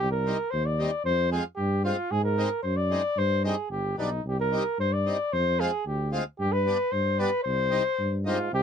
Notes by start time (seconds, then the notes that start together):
0.00 C2 G4
0.11 A#4
0.26 G3 C4 D#4
0.51 D#2 C5
0.66 D5
0.79 G3 C4 D#4
1.05 F2 C5
1.31 G#3 C4 F4 G#4
1.56 G2 G4
1.85 G#3 C4 F4
2.11 G#2 G#4
2.24 A#4
2.37 G#3 C4 D#4
2.63 F#2 C5
2.77 D5
2.91 G#3 C4 D#4
3.17 G2 C5
3.44 G3 C4 D#4 G#4
3.70 G1 G4
3.97 B1 G3 B3 D4 D#4
4.24 C2 G4
4.40 A#4
4.52 G3 C4 D#4
4.79 G2 C5
4.93 D5
5.06 G3 C4 D#4
5.33 F2 C5
5.59 G#3 C4 F4 G#4
5.86 D2 G4
6.12 G#3 C4 F4
6.39 G2 G4
6.52 B4
6.67 G3 B3 D4
6.92 G2 C5
7.19 G3 B3 D4 B4
7.43 C2 C5
7.70 G3 C4 D#4
7.99 G2
8.25 G#2 G3 C4 D#4 F4
8.51 C2 C3 G4